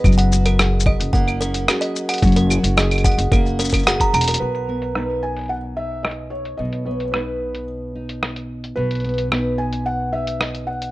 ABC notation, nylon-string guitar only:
X:1
M:4/4
L:1/8
Q:1/4=110
K:B
V:1 name="Nylon-string guitar"
F, F G2 A, C [CFG]2 | F, F G2 A, C [CFG]2 | B,, B, [B,DB]3 D3 | B,, B, [B,DB]3 D3 |
B,, B, [B,DB]3 D3 |]